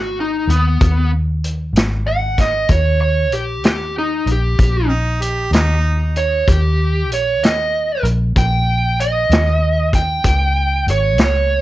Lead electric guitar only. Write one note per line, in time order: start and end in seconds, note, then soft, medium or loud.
0.00 0.18 F#4 medium
0.20 0.49 D#4 medium
0.50 1.10 B3 medium
2.08 2.37 F#5 medium
2.40 2.70 D#5 medium
2.71 3.00 C#5 medium
3.01 3.31 C#5 medium
3.33 3.63 G4 medium
3.65 3.95 G4 medium
3.98 4.27 D#4 medium
4.31 4.90 G4 medium
6.17 6.47 C#5 medium
6.49 7.09 G4 medium
7.14 7.42 C#5 medium
7.44 8.03 D#5 medium
8.38 8.98 G5 medium
9.00 9.91 D#5 medium
9.95 10.86 G5 medium
10.90 11.20 C#5 medium
11.22 11.61 C#5 medium